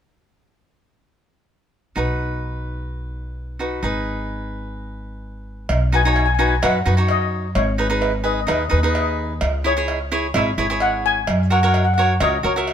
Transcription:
1.96 B1 D#4 F#4 B4
3.59 D#4 F#4 B4
3.83 G#1 D#4 G#4 B4
5.69 B1, cowbell
5.92 D#4 F#4 B4 G#5
6.03 D#4 F#4 C#5 G#5
6.13 G#5, cowbell
6.19 G#5
6.26 G#5
6.35 G#5
6.39 D#4 F#4 B4 G#5
6.48 G#5
6.62 F#2 D#4 F#4 B4 F#5, cowbell
6.86 F#2 D#4 F#4 B4
6.97 D#4 F#4 C#5
7.08 D#5, cowbell
7.55 G#1 C#5, cowbell
7.78 D#4 G#4 B4
7.90 D#4 G#4 B4
8.01 B4, cowbell
8.24 D#4 G#4 B4 D#5
8.34 D#5
8.41 D#5
8.47 D#2 D#4 G#4 B4 D#5, cowbell
8.55 D#5
8.63 D#5
8.69 D#2 D#4 G#4 B4 D#5
8.78 D#5
8.83 D#4 G#4 B4
8.87 D#5
8.93 D#5, cowbell
9.00 D#5
9.41 C#2, cowbell
9.64 E4 G#4 C#5
9.77 E4 G#4 C#5
9.88 cowbell
10.12 E4 G#4 C#5
10.34 G#1 E4 G#4 C#5 E5, cowbell
10.58 G#1 E4 G#4 C#5
10.70 E4 G#4 C#5
10.80 F#5, cowbell
11.06 G#5
11.27 F#2, cowbell
11.50 F#4 A#4 C#5 F#5
11.61 F#4 A#4 C#5 F#5
11.68 F#5
11.74 F#5, cowbell
11.84 F#5
11.94 F#4 F#5
11.99 A#4 C#5
12.05 F#5
12.20 C#2 F#4 A#4 C#5 D#5, cowbell
12.43 C#2 F#4 A#4 C#5
12.56 F#4 A#4 E5
12.68 cowbell

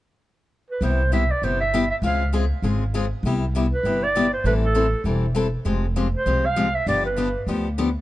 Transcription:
0.70 B4
0.81 C2 C3 G3 B3 E4 G4 C5
1.12 C3 G3 B3 E4 G4 E5
1.31 D5
1.42 G1 C3 G3 B3 E4 G4 C5
1.61 E5
1.74 C3 G3 B3 E4 G4
1.90 E5
2.02 C#2 C#3 G#3 C4 F4 G#4 F5
2.33 C#3 G#3 C4 F4 G#4
2.62 G#1 C#3 G#3 C4 F4 G#4
2.94 C#3 G#3 C4 F4 G#4
3.23 C2 C3 G3 B3 E4 G4
3.55 C3 G3 B3 E4 G4
3.73 B4
3.83 G1 C3 G3 B3 E4 G4
4.03 D5
4.15 C3 G3 B3 E4 G4
4.33 C5
4.44 A1 E3 G3 C4 E4 A4 B4
4.65 A4
4.75 E3 G3 C4 E4 A4
5.04 E1 E3 G3 C4 E4 A4
5.35 E3 G3 C4 E4 A4
5.65 F1 F3 G#3 C4 G4
5.96 F3 G#3 C4 G4
6.16 C5
6.26 C2 F3 G#3 C4 G4
6.45 F5
6.56 F3 G#3 C4 G4
6.75 E5
6.87 G1 D3 F3 B3 D4 G4 D5
7.06 B4
7.16 D3 F3 B3 D4 G4
7.47 D2 D3 F3 B3 D4 G4
7.78 D3 F3 B3 D4 G4

